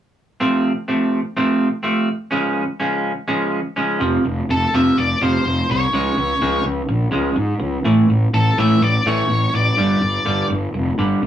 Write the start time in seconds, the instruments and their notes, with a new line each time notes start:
0.40 clean electric guitar C3 F3 A3 C4
0.88 clean electric guitar C3 F3 A3 C4
1.37 clean electric guitar C3 F3 A3 C4
1.83 clean electric guitar C3 F3 A3 C4
2.31 clean electric guitar C#3 F3 G#3 C#4
2.80 clean electric guitar C#3 F3 G#3 C#4
3.28 clean electric guitar C#3 F3 G#3 C#4
3.76 clean electric guitar C#3 F3 G#3 C#4
4.00 fingered electric bass F1, clean electric guitar F2 C3 F3
4.25 fingered electric bass F1, clean electric guitar F2 C3
4.49 fingered electric bass F1, clean electric guitar F2 C3, lead electric guitar A4
4.74 fingered electric bass F1, clean electric guitar F2 C3 F3, lead electric guitar E5
4.98 fingered electric bass F1, clean electric guitar F2 C3, lead electric guitar D5
5.22 fingered electric bass F1, clean electric guitar F2 C3 F3, lead electric guitar C5
5.46 fingered electric bass F1, clean electric guitar F2 C3
5.70 fingered electric bass C2, clean electric guitar F2 C3, lead electric guitar C#5
5.93 fingered electric bass C#2, clean electric guitar C#3 F3 G#3
6.17 fingered electric bass C#2, clean electric guitar C#3 F3
6.41 fingered electric bass C#2, clean electric guitar C#3 F3 G#3
6.64 fingered electric bass C#2, clean electric guitar C#3 F3
6.89 fingered electric bass A#1, clean electric guitar C#3 F3
7.11 fingered electric bass C#2, clean electric guitar C#3 F3 G#3
7.36 fingered electric bass G#2, clean electric guitar C#3 F3
7.60 fingered electric bass C#2, clean electric guitar C#3 F3
7.84 fingered electric bass A1, clean electric guitar A2 E3 A3
8.09 fingered electric bass A1, clean electric guitar A2 E3
8.33 fingered electric bass A1, clean electric guitar A2 E3, lead electric guitar A4
8.58 fingered electric bass A1, clean electric guitar A2 E3 A3, lead electric guitar E5
8.81 fingered electric bass A1, clean electric guitar E3, lead electric guitar D5
9.06 fingered electric bass A1, clean electric guitar A2 E3 A3, lead electric guitar C#5
9.29 fingered electric bass A1, clean electric guitar A2 E3
9.53 fingered electric bass A1, clean electric guitar A2 E3, lead electric guitar D5
9.77 fingered electric bass G1, clean electric guitar G2 D3 G3
10.02 fingered electric bass G1, clean electric guitar G2 D3
10.25 fingered electric bass G1, clean electric guitar G2 D3 G3
10.50 fingered electric bass G1, clean electric guitar G2 D3
10.74 fingered electric bass F1, clean electric guitar G2 D3
10.98 fingered electric bass G1, clean electric guitar G2 D3 G3
11.22 fingered electric bass D2, clean electric guitar G2 D3